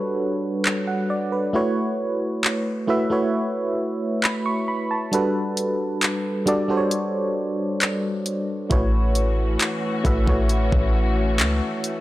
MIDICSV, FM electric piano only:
0, 0, Header, 1, 2, 480
1, 0, Start_track
1, 0, Tempo, 895522
1, 829, Time_signature, 4, 2, 24, 8
1, 6435, End_track
2, 0, Start_track
2, 0, Title_t, "FM electric piano"
2, 0, Program_c, 0, 5
2, 0, Control_c, 0, 64, 127
2, 0, Note_on_c, 0, 55, 83
2, 0, Note_on_c, 0, 62, 74
2, 0, Note_on_c, 0, 66, 72
2, 0, Note_on_c, 0, 69, 72
2, 0, Note_on_c, 0, 71, 90
2, 0, Note_on_c, 0, 73, 89
2, 351, Note_off_c, 0, 71, 0
2, 469, Note_on_c, 0, 78, 62
2, 520, Note_off_c, 0, 55, 0
2, 522, Note_off_c, 0, 62, 0
2, 524, Note_off_c, 0, 66, 0
2, 525, Note_off_c, 0, 69, 0
2, 583, Note_off_c, 0, 78, 0
2, 589, Note_on_c, 0, 74, 70
2, 703, Note_off_c, 0, 74, 0
2, 709, Note_on_c, 0, 71, 64
2, 822, Note_on_c, 0, 57, 81
2, 825, Note_on_c, 0, 64, 78
2, 826, Note_off_c, 0, 71, 0
2, 828, Note_on_c, 0, 66, 74
2, 832, Note_on_c, 0, 71, 77
2, 835, Control_c, 0, 64, 0
2, 836, Note_off_c, 0, 73, 0
2, 836, Note_on_c, 0, 73, 93
2, 931, Control_c, 0, 64, 127
2, 1407, Note_off_c, 0, 57, 0
2, 1408, Note_off_c, 0, 64, 0
2, 1410, Note_off_c, 0, 66, 0
2, 1412, Note_off_c, 0, 71, 0
2, 1414, Note_off_c, 0, 73, 0
2, 1541, Note_on_c, 0, 57, 76
2, 1544, Note_on_c, 0, 64, 75
2, 1548, Note_on_c, 0, 66, 75
2, 1551, Note_on_c, 0, 71, 79
2, 1555, Note_on_c, 0, 76, 91
2, 1641, Note_off_c, 0, 57, 0
2, 1643, Note_off_c, 0, 64, 0
2, 1645, Note_off_c, 0, 66, 0
2, 1647, Note_off_c, 0, 71, 0
2, 1649, Note_off_c, 0, 76, 0
2, 1661, Note_on_c, 0, 57, 83
2, 1664, Note_on_c, 0, 64, 72
2, 1668, Note_on_c, 0, 66, 74
2, 1671, Note_on_c, 0, 71, 78
2, 1675, Note_on_c, 0, 73, 89
2, 2269, Note_on_c, 0, 83, 64
2, 2383, Note_off_c, 0, 83, 0
2, 2389, Note_on_c, 0, 85, 66
2, 2440, Note_off_c, 0, 57, 0
2, 2441, Note_off_c, 0, 64, 0
2, 2444, Note_off_c, 0, 66, 0
2, 2445, Note_off_c, 0, 71, 0
2, 2447, Note_off_c, 0, 73, 0
2, 2503, Note_off_c, 0, 85, 0
2, 2509, Note_on_c, 0, 83, 70
2, 2623, Note_off_c, 0, 83, 0
2, 2631, Note_on_c, 0, 81, 62
2, 2742, Note_on_c, 0, 55, 84
2, 2746, Note_on_c, 0, 62, 73
2, 2749, Note_on_c, 0, 66, 70
2, 2753, Note_on_c, 0, 69, 77
2, 2755, Control_c, 0, 64, 0
2, 2757, Note_on_c, 0, 71, 90
2, 2844, Control_c, 0, 64, 127
2, 2858, Note_off_c, 0, 81, 0
2, 3327, Note_off_c, 0, 55, 0
2, 3329, Note_off_c, 0, 62, 0
2, 3330, Note_off_c, 0, 66, 0
2, 3332, Note_off_c, 0, 69, 0
2, 3334, Note_off_c, 0, 71, 0
2, 3462, Note_on_c, 0, 55, 78
2, 3465, Note_on_c, 0, 62, 72
2, 3469, Note_on_c, 0, 66, 70
2, 3472, Note_on_c, 0, 69, 71
2, 3476, Note_on_c, 0, 74, 89
2, 3562, Note_off_c, 0, 55, 0
2, 3564, Note_off_c, 0, 62, 0
2, 3565, Note_off_c, 0, 66, 0
2, 3567, Note_off_c, 0, 69, 0
2, 3569, Note_off_c, 0, 74, 0
2, 3581, Note_on_c, 0, 55, 82
2, 3585, Note_on_c, 0, 62, 73
2, 3589, Note_on_c, 0, 66, 72
2, 3592, Note_on_c, 0, 69, 75
2, 3596, Note_on_c, 0, 72, 74
2, 3627, Note_off_c, 0, 72, 0
2, 3630, Note_on_c, 0, 73, 85
2, 4360, Note_off_c, 0, 55, 0
2, 4362, Note_off_c, 0, 62, 0
2, 4364, Note_off_c, 0, 66, 0
2, 4366, Note_off_c, 0, 69, 0
2, 4385, Note_off_c, 0, 73, 0
2, 4661, Note_on_c, 0, 57, 82
2, 4665, Note_on_c, 0, 64, 75
2, 4668, Note_on_c, 0, 66, 73
2, 4671, Note_on_c, 0, 71, 74
2, 4675, Note_on_c, 0, 73, 94
2, 4676, Control_c, 0, 64, 0
2, 4772, Control_c, 0, 64, 127
2, 5246, Note_off_c, 0, 57, 0
2, 5248, Note_off_c, 0, 64, 0
2, 5250, Note_off_c, 0, 66, 0
2, 5251, Note_off_c, 0, 71, 0
2, 5253, Note_off_c, 0, 73, 0
2, 5381, Note_on_c, 0, 57, 79
2, 5385, Note_on_c, 0, 64, 73
2, 5389, Note_on_c, 0, 66, 72
2, 5392, Note_on_c, 0, 71, 72
2, 5395, Note_on_c, 0, 76, 90
2, 5482, Note_off_c, 0, 57, 0
2, 5483, Note_off_c, 0, 64, 0
2, 5485, Note_off_c, 0, 66, 0
2, 5487, Note_off_c, 0, 71, 0
2, 5489, Note_off_c, 0, 76, 0
2, 5501, Note_on_c, 0, 57, 83
2, 5505, Note_on_c, 0, 64, 74
2, 5508, Note_on_c, 0, 66, 75
2, 5511, Note_on_c, 0, 71, 75
2, 5516, Note_on_c, 0, 73, 89
2, 6280, Note_off_c, 0, 57, 0
2, 6282, Note_off_c, 0, 64, 0
2, 6284, Note_off_c, 0, 66, 0
2, 6285, Note_off_c, 0, 71, 0
2, 6288, Note_off_c, 0, 73, 0
2, 6435, End_track
0, 0, End_of_file